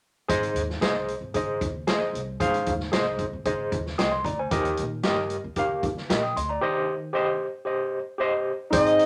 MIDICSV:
0, 0, Header, 1, 7, 480
1, 0, Start_track
1, 0, Tempo, 526778
1, 270, Time_signature, 4, 2, 24, 8
1, 8253, End_track
2, 0, Start_track
2, 0, Title_t, "Trumpet"
2, 0, Program_c, 0, 56
2, 7952, Note_on_c, 0, 75, 104
2, 8253, Note_off_c, 0, 75, 0
2, 8253, End_track
3, 0, Start_track
3, 0, Title_t, "Clean electric guitar"
3, 0, Program_c, 1, 27
3, 748, Note_on_c, 1, 68, 79
3, 753, Note_on_c, 1, 72, 92
3, 759, Note_on_c, 1, 75, 93
3, 858, Note_off_c, 1, 68, 0
3, 860, Note_off_c, 1, 72, 0
3, 863, Note_off_c, 1, 75, 0
3, 1706, Note_on_c, 1, 68, 65
3, 1712, Note_on_c, 1, 72, 70
3, 1720, Note_on_c, 1, 75, 72
3, 1817, Note_off_c, 1, 68, 0
3, 1820, Note_off_c, 1, 72, 0
3, 1824, Note_off_c, 1, 75, 0
3, 2668, Note_on_c, 1, 68, 76
3, 2676, Note_on_c, 1, 72, 89
3, 2681, Note_on_c, 1, 75, 85
3, 2778, Note_off_c, 1, 68, 0
3, 2782, Note_off_c, 1, 72, 0
3, 2785, Note_off_c, 1, 75, 0
3, 3632, Note_on_c, 1, 68, 70
3, 3638, Note_on_c, 1, 72, 73
3, 3640, Note_on_c, 1, 75, 77
3, 3740, Note_off_c, 1, 68, 0
3, 3743, Note_off_c, 1, 72, 0
3, 3745, Note_off_c, 1, 75, 0
3, 4591, Note_on_c, 1, 67, 77
3, 4596, Note_on_c, 1, 70, 74
3, 4601, Note_on_c, 1, 75, 84
3, 4700, Note_off_c, 1, 67, 0
3, 4703, Note_off_c, 1, 70, 0
3, 4705, Note_off_c, 1, 75, 0
3, 5555, Note_on_c, 1, 67, 73
3, 5563, Note_on_c, 1, 70, 76
3, 5565, Note_on_c, 1, 75, 86
3, 5662, Note_off_c, 1, 67, 0
3, 5666, Note_off_c, 1, 70, 0
3, 5667, Note_off_c, 1, 75, 0
3, 6514, Note_on_c, 1, 67, 76
3, 6520, Note_on_c, 1, 72, 81
3, 6526, Note_on_c, 1, 75, 82
3, 6622, Note_off_c, 1, 67, 0
3, 6624, Note_off_c, 1, 72, 0
3, 6628, Note_off_c, 1, 75, 0
3, 7474, Note_on_c, 1, 67, 68
3, 7479, Note_on_c, 1, 72, 79
3, 7486, Note_on_c, 1, 75, 75
3, 7581, Note_off_c, 1, 67, 0
3, 7584, Note_off_c, 1, 72, 0
3, 7587, Note_off_c, 1, 75, 0
3, 8253, End_track
4, 0, Start_track
4, 0, Title_t, "Tine electric piano"
4, 0, Program_c, 2, 4
4, 259, Note_on_c, 2, 68, 97
4, 265, Note_on_c, 2, 72, 86
4, 268, Note_on_c, 2, 44, 62
4, 276, Note_on_c, 2, 75, 106
4, 555, Note_off_c, 2, 68, 0
4, 558, Note_off_c, 2, 72, 0
4, 563, Note_off_c, 2, 75, 0
4, 740, Note_on_c, 2, 68, 78
4, 749, Note_on_c, 2, 72, 74
4, 757, Note_on_c, 2, 75, 91
4, 953, Note_off_c, 2, 44, 0
4, 1035, Note_off_c, 2, 68, 0
4, 1040, Note_off_c, 2, 72, 0
4, 1044, Note_off_c, 2, 75, 0
4, 1223, Note_on_c, 2, 68, 77
4, 1236, Note_on_c, 2, 72, 68
4, 1244, Note_on_c, 2, 75, 82
4, 1517, Note_off_c, 2, 68, 0
4, 1523, Note_off_c, 2, 72, 0
4, 1528, Note_off_c, 2, 75, 0
4, 1708, Note_on_c, 2, 68, 75
4, 1716, Note_on_c, 2, 72, 69
4, 1726, Note_on_c, 2, 75, 91
4, 2000, Note_off_c, 2, 68, 0
4, 2004, Note_off_c, 2, 72, 0
4, 2009, Note_off_c, 2, 75, 0
4, 2188, Note_on_c, 2, 68, 98
4, 2190, Note_on_c, 2, 72, 88
4, 2193, Note_on_c, 2, 44, 64
4, 2202, Note_on_c, 2, 77, 108
4, 2480, Note_off_c, 2, 68, 0
4, 2481, Note_off_c, 2, 72, 0
4, 2487, Note_off_c, 2, 77, 0
4, 2660, Note_on_c, 2, 68, 84
4, 2669, Note_on_c, 2, 72, 78
4, 2678, Note_on_c, 2, 75, 91
4, 2877, Note_off_c, 2, 44, 0
4, 2956, Note_off_c, 2, 68, 0
4, 2961, Note_off_c, 2, 72, 0
4, 2965, Note_off_c, 2, 75, 0
4, 3149, Note_on_c, 2, 68, 77
4, 3152, Note_on_c, 2, 72, 73
4, 3160, Note_on_c, 2, 75, 86
4, 3441, Note_off_c, 2, 68, 0
4, 3442, Note_off_c, 2, 72, 0
4, 3446, Note_off_c, 2, 75, 0
4, 3628, Note_on_c, 2, 87, 57
4, 3633, Note_on_c, 2, 79, 54
4, 3744, Note_off_c, 2, 87, 0
4, 3747, Note_off_c, 2, 79, 0
4, 3752, Note_on_c, 2, 84, 69
4, 3759, Note_on_c, 2, 75, 54
4, 3866, Note_off_c, 2, 84, 0
4, 3870, Note_off_c, 2, 75, 0
4, 3872, Note_on_c, 2, 82, 65
4, 3875, Note_on_c, 2, 74, 58
4, 3986, Note_off_c, 2, 82, 0
4, 3988, Note_off_c, 2, 74, 0
4, 4003, Note_on_c, 2, 80, 59
4, 4005, Note_on_c, 2, 72, 50
4, 4112, Note_on_c, 2, 67, 98
4, 4118, Note_on_c, 2, 51, 69
4, 4118, Note_on_c, 2, 70, 92
4, 4124, Note_on_c, 2, 75, 105
4, 4226, Note_off_c, 2, 80, 0
4, 4227, Note_off_c, 2, 72, 0
4, 4402, Note_off_c, 2, 67, 0
4, 4406, Note_off_c, 2, 70, 0
4, 4409, Note_off_c, 2, 75, 0
4, 4588, Note_on_c, 2, 67, 83
4, 4600, Note_on_c, 2, 70, 79
4, 4609, Note_on_c, 2, 75, 98
4, 4799, Note_off_c, 2, 51, 0
4, 4881, Note_off_c, 2, 67, 0
4, 4887, Note_off_c, 2, 70, 0
4, 4891, Note_off_c, 2, 75, 0
4, 5071, Note_on_c, 2, 67, 76
4, 5085, Note_on_c, 2, 70, 72
4, 5094, Note_on_c, 2, 77, 87
4, 5324, Note_off_c, 2, 77, 0
4, 5362, Note_off_c, 2, 67, 0
4, 5369, Note_off_c, 2, 70, 0
4, 5676, Note_on_c, 2, 87, 60
4, 5681, Note_on_c, 2, 79, 47
4, 5789, Note_off_c, 2, 87, 0
4, 5791, Note_off_c, 2, 79, 0
4, 5801, Note_on_c, 2, 84, 70
4, 5808, Note_on_c, 2, 75, 57
4, 5911, Note_off_c, 2, 84, 0
4, 5915, Note_off_c, 2, 75, 0
4, 5917, Note_on_c, 2, 82, 61
4, 5927, Note_on_c, 2, 74, 54
4, 6026, Note_on_c, 2, 67, 93
4, 6034, Note_on_c, 2, 72, 88
4, 6038, Note_on_c, 2, 51, 63
4, 6043, Note_on_c, 2, 75, 106
4, 6143, Note_off_c, 2, 82, 0
4, 6149, Note_off_c, 2, 74, 0
4, 6320, Note_off_c, 2, 67, 0
4, 6323, Note_off_c, 2, 72, 0
4, 6328, Note_off_c, 2, 75, 0
4, 6497, Note_on_c, 2, 67, 81
4, 6504, Note_on_c, 2, 72, 74
4, 6515, Note_on_c, 2, 75, 90
4, 6719, Note_off_c, 2, 51, 0
4, 6795, Note_off_c, 2, 67, 0
4, 6798, Note_off_c, 2, 72, 0
4, 6804, Note_off_c, 2, 75, 0
4, 6970, Note_on_c, 2, 67, 72
4, 6978, Note_on_c, 2, 72, 72
4, 6989, Note_on_c, 2, 75, 84
4, 7271, Note_off_c, 2, 67, 0
4, 7275, Note_off_c, 2, 72, 0
4, 7280, Note_off_c, 2, 75, 0
4, 7457, Note_on_c, 2, 67, 80
4, 7469, Note_on_c, 2, 72, 69
4, 7478, Note_on_c, 2, 75, 87
4, 7754, Note_off_c, 2, 67, 0
4, 7761, Note_off_c, 2, 72, 0
4, 7765, Note_off_c, 2, 75, 0
4, 7933, Note_on_c, 2, 63, 69
4, 7943, Note_on_c, 2, 44, 64
4, 7950, Note_on_c, 2, 68, 65
4, 7955, Note_on_c, 2, 72, 79
4, 8232, Note_off_c, 2, 63, 0
4, 8240, Note_off_c, 2, 68, 0
4, 8243, Note_off_c, 2, 72, 0
4, 8253, Note_off_c, 2, 44, 0
4, 8253, End_track
5, 0, Start_track
5, 0, Title_t, "Tonewheel organ"
5, 0, Program_c, 3, 16
5, 7954, Note_on_c, 3, 60, 59
5, 7956, Note_on_c, 3, 63, 77
5, 7958, Note_on_c, 3, 56, 69
5, 8253, Note_off_c, 3, 56, 0
5, 8253, Note_off_c, 3, 60, 0
5, 8253, Note_off_c, 3, 63, 0
5, 8253, End_track
6, 0, Start_track
6, 0, Title_t, "Upright bass"
6, 0, Program_c, 4, 32
6, 268, Note_on_c, 4, 32, 84
6, 495, Note_on_c, 4, 39, 82
6, 509, Note_off_c, 4, 32, 0
6, 682, Note_off_c, 4, 39, 0
6, 741, Note_on_c, 4, 36, 75
6, 1016, Note_off_c, 4, 36, 0
6, 1101, Note_on_c, 4, 32, 74
6, 1195, Note_off_c, 4, 32, 0
6, 1226, Note_on_c, 4, 32, 81
6, 1408, Note_off_c, 4, 32, 0
6, 1467, Note_on_c, 4, 39, 76
6, 1830, Note_off_c, 4, 39, 0
6, 1945, Note_on_c, 4, 36, 85
6, 2128, Note_off_c, 4, 36, 0
6, 2189, Note_on_c, 4, 32, 92
6, 2371, Note_off_c, 4, 32, 0
6, 2434, Note_on_c, 4, 39, 87
6, 2614, Note_off_c, 4, 39, 0
6, 2675, Note_on_c, 4, 36, 85
6, 2945, Note_off_c, 4, 36, 0
6, 3035, Note_on_c, 4, 32, 83
6, 3124, Note_off_c, 4, 32, 0
6, 3147, Note_on_c, 4, 32, 82
6, 3330, Note_off_c, 4, 32, 0
6, 3388, Note_on_c, 4, 39, 86
6, 3570, Note_off_c, 4, 39, 0
6, 3635, Note_on_c, 4, 36, 90
6, 3815, Note_off_c, 4, 36, 0
6, 3866, Note_on_c, 4, 38, 83
6, 4049, Note_off_c, 4, 38, 0
6, 4112, Note_on_c, 4, 39, 93
6, 4293, Note_off_c, 4, 39, 0
6, 4368, Note_on_c, 4, 46, 88
6, 4607, Note_off_c, 4, 46, 0
6, 4607, Note_on_c, 4, 43, 83
6, 4873, Note_off_c, 4, 43, 0
6, 4959, Note_on_c, 4, 39, 82
6, 5228, Note_off_c, 4, 39, 0
6, 5313, Note_on_c, 4, 39, 81
6, 5494, Note_off_c, 4, 39, 0
6, 5559, Note_on_c, 4, 46, 85
6, 5737, Note_off_c, 4, 46, 0
6, 5795, Note_on_c, 4, 38, 86
6, 5975, Note_off_c, 4, 38, 0
6, 7951, Note_on_c, 4, 32, 97
6, 8222, Note_off_c, 4, 32, 0
6, 8253, End_track
7, 0, Start_track
7, 0, Title_t, "Drums"
7, 268, Note_on_c, 9, 36, 98
7, 269, Note_on_c, 9, 42, 91
7, 359, Note_off_c, 9, 36, 0
7, 360, Note_off_c, 9, 42, 0
7, 391, Note_on_c, 9, 42, 52
7, 483, Note_off_c, 9, 42, 0
7, 508, Note_on_c, 9, 42, 77
7, 599, Note_off_c, 9, 42, 0
7, 636, Note_on_c, 9, 38, 31
7, 727, Note_off_c, 9, 38, 0
7, 746, Note_on_c, 9, 42, 77
7, 747, Note_on_c, 9, 38, 107
7, 837, Note_off_c, 9, 42, 0
7, 838, Note_off_c, 9, 38, 0
7, 987, Note_on_c, 9, 42, 54
7, 1078, Note_off_c, 9, 42, 0
7, 1223, Note_on_c, 9, 42, 68
7, 1228, Note_on_c, 9, 36, 71
7, 1314, Note_off_c, 9, 42, 0
7, 1319, Note_off_c, 9, 36, 0
7, 1469, Note_on_c, 9, 36, 86
7, 1471, Note_on_c, 9, 42, 60
7, 1561, Note_off_c, 9, 36, 0
7, 1563, Note_off_c, 9, 42, 0
7, 1708, Note_on_c, 9, 38, 98
7, 1708, Note_on_c, 9, 42, 84
7, 1799, Note_off_c, 9, 38, 0
7, 1799, Note_off_c, 9, 42, 0
7, 1960, Note_on_c, 9, 42, 72
7, 2051, Note_off_c, 9, 42, 0
7, 2191, Note_on_c, 9, 36, 99
7, 2193, Note_on_c, 9, 42, 97
7, 2282, Note_off_c, 9, 36, 0
7, 2284, Note_off_c, 9, 42, 0
7, 2314, Note_on_c, 9, 42, 51
7, 2406, Note_off_c, 9, 42, 0
7, 2427, Note_on_c, 9, 42, 69
7, 2433, Note_on_c, 9, 36, 86
7, 2518, Note_off_c, 9, 42, 0
7, 2524, Note_off_c, 9, 36, 0
7, 2550, Note_on_c, 9, 38, 28
7, 2641, Note_off_c, 9, 38, 0
7, 2667, Note_on_c, 9, 42, 82
7, 2669, Note_on_c, 9, 38, 107
7, 2758, Note_off_c, 9, 42, 0
7, 2760, Note_off_c, 9, 38, 0
7, 2905, Note_on_c, 9, 36, 80
7, 2906, Note_on_c, 9, 42, 56
7, 2996, Note_off_c, 9, 36, 0
7, 2997, Note_off_c, 9, 42, 0
7, 3147, Note_on_c, 9, 42, 71
7, 3149, Note_on_c, 9, 36, 70
7, 3238, Note_off_c, 9, 42, 0
7, 3241, Note_off_c, 9, 36, 0
7, 3391, Note_on_c, 9, 36, 89
7, 3391, Note_on_c, 9, 42, 58
7, 3482, Note_off_c, 9, 36, 0
7, 3483, Note_off_c, 9, 42, 0
7, 3519, Note_on_c, 9, 38, 34
7, 3610, Note_off_c, 9, 38, 0
7, 3633, Note_on_c, 9, 38, 93
7, 3633, Note_on_c, 9, 42, 84
7, 3724, Note_off_c, 9, 38, 0
7, 3724, Note_off_c, 9, 42, 0
7, 3868, Note_on_c, 9, 36, 89
7, 3877, Note_on_c, 9, 42, 71
7, 3959, Note_off_c, 9, 36, 0
7, 3969, Note_off_c, 9, 42, 0
7, 4111, Note_on_c, 9, 42, 91
7, 4112, Note_on_c, 9, 36, 106
7, 4202, Note_off_c, 9, 42, 0
7, 4203, Note_off_c, 9, 36, 0
7, 4237, Note_on_c, 9, 42, 51
7, 4328, Note_off_c, 9, 42, 0
7, 4349, Note_on_c, 9, 42, 72
7, 4440, Note_off_c, 9, 42, 0
7, 4586, Note_on_c, 9, 42, 76
7, 4588, Note_on_c, 9, 38, 101
7, 4677, Note_off_c, 9, 42, 0
7, 4679, Note_off_c, 9, 38, 0
7, 4828, Note_on_c, 9, 42, 56
7, 4919, Note_off_c, 9, 42, 0
7, 5066, Note_on_c, 9, 42, 74
7, 5070, Note_on_c, 9, 36, 73
7, 5157, Note_off_c, 9, 42, 0
7, 5161, Note_off_c, 9, 36, 0
7, 5313, Note_on_c, 9, 36, 86
7, 5315, Note_on_c, 9, 42, 56
7, 5404, Note_off_c, 9, 36, 0
7, 5406, Note_off_c, 9, 42, 0
7, 5444, Note_on_c, 9, 38, 32
7, 5535, Note_off_c, 9, 38, 0
7, 5558, Note_on_c, 9, 38, 98
7, 5558, Note_on_c, 9, 42, 84
7, 5649, Note_off_c, 9, 38, 0
7, 5649, Note_off_c, 9, 42, 0
7, 5804, Note_on_c, 9, 42, 68
7, 5895, Note_off_c, 9, 42, 0
7, 7952, Note_on_c, 9, 36, 106
7, 7952, Note_on_c, 9, 42, 105
7, 8043, Note_off_c, 9, 36, 0
7, 8043, Note_off_c, 9, 42, 0
7, 8076, Note_on_c, 9, 42, 55
7, 8168, Note_off_c, 9, 42, 0
7, 8194, Note_on_c, 9, 42, 76
7, 8253, Note_off_c, 9, 42, 0
7, 8253, End_track
0, 0, End_of_file